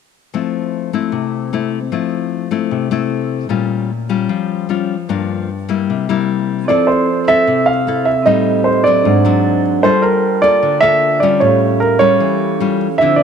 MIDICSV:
0, 0, Header, 1, 4, 480
1, 0, Start_track
1, 0, Key_signature, -1, "major"
1, 0, Tempo, 396040
1, 407, Time_signature, 4, 2, 24, 8
1, 16035, End_track
2, 0, Start_track
2, 0, Title_t, "Grand piano"
2, 0, Program_c, 0, 0
2, 8097, Note_on_c, 0, 74, 71
2, 8327, Note_on_c, 0, 72, 66
2, 8340, Note_off_c, 0, 74, 0
2, 8774, Note_off_c, 0, 72, 0
2, 8824, Note_on_c, 0, 76, 99
2, 9284, Note_on_c, 0, 77, 78
2, 9311, Note_off_c, 0, 76, 0
2, 9760, Note_on_c, 0, 76, 71
2, 9781, Note_off_c, 0, 77, 0
2, 10007, Note_on_c, 0, 75, 76
2, 10012, Note_off_c, 0, 76, 0
2, 10475, Note_on_c, 0, 72, 72
2, 10503, Note_off_c, 0, 75, 0
2, 10712, Note_on_c, 0, 74, 84
2, 10730, Note_off_c, 0, 72, 0
2, 11633, Note_off_c, 0, 74, 0
2, 11916, Note_on_c, 0, 72, 85
2, 12144, Note_on_c, 0, 70, 75
2, 12146, Note_off_c, 0, 72, 0
2, 12626, Note_on_c, 0, 74, 90
2, 12653, Note_off_c, 0, 70, 0
2, 13095, Note_on_c, 0, 76, 103
2, 13133, Note_off_c, 0, 74, 0
2, 13559, Note_off_c, 0, 76, 0
2, 13574, Note_on_c, 0, 74, 75
2, 13815, Note_off_c, 0, 74, 0
2, 13819, Note_on_c, 0, 73, 76
2, 14280, Note_off_c, 0, 73, 0
2, 14303, Note_on_c, 0, 70, 79
2, 14534, Note_on_c, 0, 73, 96
2, 14539, Note_off_c, 0, 70, 0
2, 15464, Note_off_c, 0, 73, 0
2, 15733, Note_on_c, 0, 76, 90
2, 15954, Note_on_c, 0, 74, 73
2, 16000, Note_off_c, 0, 76, 0
2, 16035, Note_off_c, 0, 74, 0
2, 16035, End_track
3, 0, Start_track
3, 0, Title_t, "Vibraphone"
3, 0, Program_c, 1, 11
3, 8058, Note_on_c, 1, 60, 46
3, 8100, Note_on_c, 1, 69, 39
3, 8131, Note_on_c, 1, 88, 46
3, 8309, Control_c, 1, 64, 127
3, 9951, Note_off_c, 1, 60, 0
3, 9965, Note_on_c, 1, 60, 47
3, 9977, Note_off_c, 1, 69, 0
3, 9984, Note_on_c, 1, 67, 39
3, 9993, Note_off_c, 1, 88, 0
3, 10006, Note_on_c, 1, 69, 45
3, 10027, Control_c, 1, 64, 0
3, 10033, Note_on_c, 1, 75, 51
3, 10207, Control_c, 1, 64, 127
3, 10927, Note_on_c, 1, 62, 49
3, 10928, Note_off_c, 1, 60, 0
3, 10938, Note_off_c, 1, 67, 0
3, 10949, Note_off_c, 1, 69, 0
3, 10949, Note_on_c, 1, 68, 42
3, 10963, Note_off_c, 1, 75, 0
3, 10970, Note_on_c, 1, 72, 44
3, 10983, Control_c, 1, 64, 0
3, 10997, Note_on_c, 1, 78, 57
3, 11210, Control_c, 1, 64, 127
3, 11890, Note_off_c, 1, 62, 0
3, 11897, Note_on_c, 1, 65, 42
3, 11901, Note_off_c, 1, 68, 0
3, 11911, Note_off_c, 1, 72, 0
3, 11919, Note_on_c, 1, 81, 42
3, 11925, Note_off_c, 1, 78, 0
3, 11945, Control_c, 1, 64, 0
3, 11967, Note_on_c, 1, 79, 50
3, 12178, Control_c, 1, 64, 127
3, 13796, Note_off_c, 1, 65, 0
3, 13807, Note_off_c, 1, 81, 0
3, 13811, Note_on_c, 1, 61, 47
3, 13832, Note_off_c, 1, 79, 0
3, 13838, Note_on_c, 1, 67, 43
3, 13856, Note_on_c, 1, 69, 38
3, 13868, Control_c, 1, 64, 0
3, 13880, Note_on_c, 1, 77, 47
3, 14062, Control_c, 1, 64, 127
3, 15712, Note_off_c, 1, 61, 0
3, 15721, Note_on_c, 1, 62, 41
3, 15726, Note_off_c, 1, 67, 0
3, 15735, Note_off_c, 1, 69, 0
3, 15747, Note_off_c, 1, 77, 0
3, 15767, Note_on_c, 1, 72, 45
3, 15785, Control_c, 1, 64, 0
3, 15795, Note_on_c, 1, 88, 49
3, 16021, Control_c, 1, 64, 127
3, 16035, Note_off_c, 1, 62, 0
3, 16035, Note_off_c, 1, 72, 0
3, 16035, Note_off_c, 1, 88, 0
3, 16035, End_track
4, 0, Start_track
4, 0, Title_t, "Nylon-string guitar"
4, 0, Program_c, 2, 24
4, 407, Note_on_c, 2, 57, 46
4, 409, Note_on_c, 2, 53, 51
4, 415, Note_on_c, 2, 60, 51
4, 418, Note_on_c, 2, 64, 50
4, 1088, Note_off_c, 2, 57, 0
4, 1090, Note_off_c, 2, 60, 0
4, 1094, Note_off_c, 2, 64, 0
4, 1130, Note_on_c, 2, 57, 52
4, 1136, Note_on_c, 2, 60, 48
4, 1142, Note_on_c, 2, 64, 54
4, 1344, Note_off_c, 2, 53, 0
4, 1358, Note_on_c, 2, 48, 60
4, 1810, Note_off_c, 2, 57, 0
4, 1811, Note_off_c, 2, 60, 0
4, 1815, Note_off_c, 2, 64, 0
4, 1851, Note_on_c, 2, 57, 44
4, 1859, Note_on_c, 2, 60, 42
4, 1864, Note_on_c, 2, 64, 53
4, 2158, Note_off_c, 2, 57, 0
4, 2161, Note_off_c, 2, 60, 0
4, 2164, Note_off_c, 2, 64, 0
4, 2298, Note_off_c, 2, 48, 0
4, 2324, Note_on_c, 2, 53, 57
4, 2327, Note_on_c, 2, 57, 41
4, 2330, Note_on_c, 2, 60, 42
4, 2338, Note_on_c, 2, 64, 52
4, 3007, Note_off_c, 2, 57, 0
4, 3010, Note_off_c, 2, 60, 0
4, 3011, Note_off_c, 2, 64, 0
4, 3041, Note_on_c, 2, 57, 49
4, 3046, Note_on_c, 2, 60, 51
4, 3054, Note_on_c, 2, 64, 51
4, 3261, Note_off_c, 2, 53, 0
4, 3288, Note_on_c, 2, 48, 53
4, 3485, Note_off_c, 2, 57, 0
4, 3488, Note_off_c, 2, 60, 0
4, 3491, Note_off_c, 2, 64, 0
4, 3528, Note_on_c, 2, 57, 60
4, 3534, Note_on_c, 2, 60, 55
4, 3541, Note_on_c, 2, 64, 63
4, 4208, Note_off_c, 2, 57, 0
4, 4212, Note_off_c, 2, 60, 0
4, 4213, Note_off_c, 2, 64, 0
4, 4222, Note_off_c, 2, 48, 0
4, 4231, Note_on_c, 2, 46, 54
4, 4238, Note_on_c, 2, 61, 42
4, 4239, Note_on_c, 2, 55, 40
4, 4245, Note_on_c, 2, 65, 51
4, 4718, Note_off_c, 2, 55, 0
4, 4720, Note_off_c, 2, 61, 0
4, 4720, Note_off_c, 2, 65, 0
4, 4961, Note_on_c, 2, 55, 50
4, 4967, Note_on_c, 2, 65, 53
4, 4968, Note_on_c, 2, 61, 45
4, 5175, Note_off_c, 2, 46, 0
4, 5202, Note_on_c, 2, 53, 58
4, 5645, Note_off_c, 2, 55, 0
4, 5648, Note_off_c, 2, 65, 0
4, 5649, Note_off_c, 2, 61, 0
4, 5683, Note_on_c, 2, 55, 39
4, 5690, Note_on_c, 2, 61, 43
4, 5697, Note_on_c, 2, 65, 51
4, 5994, Note_off_c, 2, 55, 0
4, 5996, Note_off_c, 2, 61, 0
4, 6001, Note_off_c, 2, 65, 0
4, 6140, Note_off_c, 2, 53, 0
4, 6168, Note_on_c, 2, 43, 59
4, 6171, Note_on_c, 2, 53, 44
4, 6176, Note_on_c, 2, 58, 44
4, 6182, Note_on_c, 2, 62, 55
4, 6645, Note_off_c, 2, 53, 0
4, 6649, Note_off_c, 2, 58, 0
4, 6650, Note_off_c, 2, 62, 0
4, 6891, Note_on_c, 2, 55, 47
4, 6896, Note_on_c, 2, 58, 48
4, 6902, Note_on_c, 2, 64, 58
4, 7104, Note_off_c, 2, 43, 0
4, 7149, Note_on_c, 2, 48, 54
4, 7332, Note_off_c, 2, 55, 0
4, 7332, Note_off_c, 2, 58, 0
4, 7336, Note_off_c, 2, 64, 0
4, 7381, Note_on_c, 2, 55, 52
4, 7387, Note_on_c, 2, 58, 58
4, 7396, Note_on_c, 2, 64, 57
4, 8056, Note_off_c, 2, 55, 0
4, 8059, Note_off_c, 2, 58, 0
4, 8064, Note_off_c, 2, 64, 0
4, 8075, Note_off_c, 2, 48, 0
4, 8104, Note_on_c, 2, 53, 57
4, 8109, Note_on_c, 2, 60, 50
4, 8110, Note_on_c, 2, 64, 46
4, 8122, Note_on_c, 2, 69, 53
4, 8575, Note_off_c, 2, 60, 0
4, 8576, Note_off_c, 2, 64, 0
4, 8582, Note_off_c, 2, 69, 0
4, 8816, Note_on_c, 2, 60, 48
4, 8823, Note_on_c, 2, 64, 45
4, 8829, Note_on_c, 2, 69, 54
4, 9033, Note_off_c, 2, 53, 0
4, 9058, Note_on_c, 2, 48, 63
4, 9496, Note_off_c, 2, 60, 0
4, 9496, Note_off_c, 2, 64, 0
4, 9501, Note_off_c, 2, 69, 0
4, 9539, Note_on_c, 2, 60, 50
4, 9552, Note_on_c, 2, 64, 48
4, 9554, Note_on_c, 2, 69, 50
4, 9843, Note_off_c, 2, 60, 0
4, 9849, Note_off_c, 2, 69, 0
4, 9850, Note_off_c, 2, 64, 0
4, 9990, Note_off_c, 2, 48, 0
4, 10008, Note_on_c, 2, 45, 51
4, 10013, Note_on_c, 2, 55, 48
4, 10021, Note_on_c, 2, 60, 49
4, 10022, Note_on_c, 2, 63, 57
4, 10694, Note_off_c, 2, 55, 0
4, 10696, Note_off_c, 2, 60, 0
4, 10698, Note_off_c, 2, 63, 0
4, 10745, Note_on_c, 2, 54, 55
4, 10750, Note_on_c, 2, 60, 49
4, 10756, Note_on_c, 2, 62, 54
4, 10945, Note_off_c, 2, 45, 0
4, 10971, Note_on_c, 2, 44, 60
4, 11179, Note_off_c, 2, 54, 0
4, 11182, Note_off_c, 2, 60, 0
4, 11184, Note_off_c, 2, 62, 0
4, 11207, Note_on_c, 2, 54, 55
4, 11216, Note_on_c, 2, 60, 59
4, 11219, Note_on_c, 2, 62, 65
4, 11891, Note_off_c, 2, 54, 0
4, 11895, Note_off_c, 2, 60, 0
4, 11896, Note_off_c, 2, 62, 0
4, 11907, Note_off_c, 2, 44, 0
4, 11925, Note_on_c, 2, 55, 57
4, 11927, Note_on_c, 2, 58, 45
4, 11931, Note_on_c, 2, 65, 41
4, 11936, Note_on_c, 2, 69, 53
4, 12406, Note_off_c, 2, 58, 0
4, 12408, Note_off_c, 2, 65, 0
4, 12411, Note_off_c, 2, 69, 0
4, 12643, Note_on_c, 2, 58, 48
4, 12646, Note_on_c, 2, 65, 49
4, 12650, Note_on_c, 2, 69, 57
4, 12864, Note_off_c, 2, 55, 0
4, 12877, Note_on_c, 2, 50, 58
4, 13089, Note_off_c, 2, 58, 0
4, 13089, Note_off_c, 2, 65, 0
4, 13092, Note_off_c, 2, 69, 0
4, 13114, Note_on_c, 2, 58, 58
4, 13119, Note_on_c, 2, 65, 56
4, 13129, Note_on_c, 2, 69, 66
4, 13564, Note_off_c, 2, 58, 0
4, 13567, Note_off_c, 2, 65, 0
4, 13572, Note_off_c, 2, 69, 0
4, 13606, Note_on_c, 2, 55, 53
4, 13612, Note_on_c, 2, 61, 61
4, 13614, Note_on_c, 2, 65, 60
4, 13821, Note_off_c, 2, 50, 0
4, 13829, Note_on_c, 2, 45, 61
4, 14530, Note_off_c, 2, 55, 0
4, 14533, Note_off_c, 2, 65, 0
4, 14534, Note_off_c, 2, 61, 0
4, 14550, Note_on_c, 2, 55, 57
4, 14558, Note_on_c, 2, 61, 54
4, 14776, Note_off_c, 2, 45, 0
4, 14791, Note_on_c, 2, 52, 58
4, 15243, Note_off_c, 2, 55, 0
4, 15244, Note_off_c, 2, 61, 0
4, 15276, Note_on_c, 2, 55, 52
4, 15284, Note_on_c, 2, 61, 49
4, 15288, Note_on_c, 2, 65, 49
4, 15593, Note_off_c, 2, 55, 0
4, 15595, Note_off_c, 2, 61, 0
4, 15598, Note_off_c, 2, 65, 0
4, 15737, Note_off_c, 2, 52, 0
4, 15767, Note_on_c, 2, 50, 58
4, 15773, Note_on_c, 2, 53, 48
4, 15775, Note_on_c, 2, 60, 43
4, 15784, Note_on_c, 2, 64, 48
4, 16035, Note_off_c, 2, 50, 0
4, 16035, Note_off_c, 2, 53, 0
4, 16035, Note_off_c, 2, 60, 0
4, 16035, Note_off_c, 2, 64, 0
4, 16035, End_track
0, 0, End_of_file